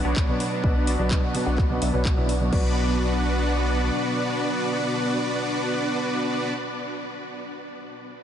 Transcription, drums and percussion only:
0.16 kick loud
0.16 clap loud
0.40 open hi-hat medium
0.64 kick loud
0.87 open hi-hat loud
1.11 kick loud
1.11 clap loud
1.35 open hi-hat medium
1.58 kick loud
1.58 clap soft
1.82 open hi-hat loud
2.05 kick loud
2.05 clap loud
2.29 open hi-hat medium
2.53 kick medium
2.53 crash medium

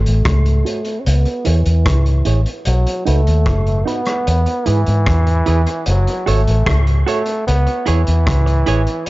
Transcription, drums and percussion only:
0.06 closed hi-hat soft
0.25 kick loud
0.25 cross-stick loud
0.25 closed hi-hat medium
0.46 closed hi-hat soft
0.66 closed hi-hat medium
0.85 closed hi-hat soft
1.06 closed hi-hat medium
1.25 closed hi-hat soft
1.45 closed hi-hat medium
1.66 closed hi-hat medium
1.86 kick loud
1.86 cross-stick loud
1.86 closed hi-hat medium
2.06 closed hi-hat soft
2.25 closed hi-hat medium
2.46 closed hi-hat soft
2.65 closed hi-hat medium
2.87 closed hi-hat medium
3.07 closed hi-hat medium
3.27 closed hi-hat medium
3.46 kick loud
3.46 cross-stick loud
3.46 closed hi-hat medium
3.67 closed hi-hat soft
3.88 closed hi-hat medium
4.05 cross-stick medium
4.05 closed hi-hat soft
4.27 closed hi-hat medium
4.46 closed hi-hat soft
4.66 closed hi-hat medium
4.86 closed hi-hat medium
5.06 kick loud
5.06 cross-stick loud
5.06 closed hi-hat medium
5.27 closed hi-hat medium
5.46 closed hi-hat medium
5.67 closed hi-hat soft
5.86 closed hi-hat medium
6.07 closed hi-hat medium
6.27 closed hi-hat medium
6.47 closed hi-hat soft
6.66 kick loud
6.66 cross-stick loud
6.66 closed hi-hat medium
6.87 closed hi-hat soft
7.08 closed hi-hat medium
7.26 closed hi-hat medium
7.48 closed hi-hat medium
7.67 closed hi-hat soft
7.86 closed hi-hat medium
8.07 closed hi-hat medium
8.27 kick loud
8.27 cross-stick loud
8.27 closed hi-hat loud
8.47 closed hi-hat soft
8.66 closed hi-hat medium
8.87 closed hi-hat soft
9.06 closed hi-hat medium

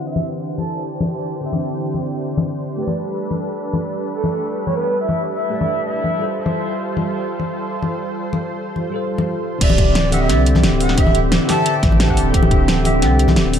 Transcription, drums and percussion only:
0.16 high conga medium
0.58 high conga medium
1.01 high conga medium
1.53 high conga medium
1.94 high conga medium
2.37 high conga medium
2.87 high conga medium
3.31 high conga medium
3.73 high conga medium
4.24 high conga medium
4.67 high conga medium
5.09 high conga medium
5.61 high conga medium
6.04 high conga medium
6.46 high conga medium
6.97 high conga medium
7.40 high conga medium
7.82 high conga medium
8.33 high conga medium
8.76 high conga medium
9.18 high conga medium
9.61 kick loud
9.61 closed hi-hat loud
9.61 crash loud
9.70 high conga medium
9.78 kick loud
9.78 closed hi-hat medium
9.95 snare loud
9.95 closed hi-hat medium
10.12 open hi-hat medium
10.12 high conga medium
10.29 snare soft
10.29 closed hi-hat medium
10.46 closed hi-hat medium
10.55 snare soft
10.55 high conga loud
10.63 snare loud
10.63 closed hi-hat medium
10.80 open hi-hat medium
10.89 snare soft
10.98 kick loud
10.98 closed hi-hat medium
11.07 high conga loud
11.15 closed hi-hat medium
11.32 snare loud
11.32 closed hi-hat medium
11.49 snare medium
11.49 open hi-hat medium
11.49 high conga medium
11.66 closed hi-hat loud
11.83 kick loud
11.83 snare soft
11.83 closed hi-hat medium
11.92 high conga medium
12.00 snare loud
12.00 closed hi-hat medium
12.09 kick medium
12.17 open hi-hat medium
12.34 kick loud
12.34 closed hi-hat medium
12.43 high conga loud
12.51 kick loud
12.51 closed hi-hat medium
12.68 snare loud
12.68 closed hi-hat medium
12.85 open hi-hat medium
12.85 high conga medium
13.02 snare soft
13.02 closed hi-hat medium
13.19 closed hi-hat medium
13.28 snare soft
13.28 high conga loud
13.36 snare loud
13.36 closed hi-hat medium
13.53 open hi-hat medium

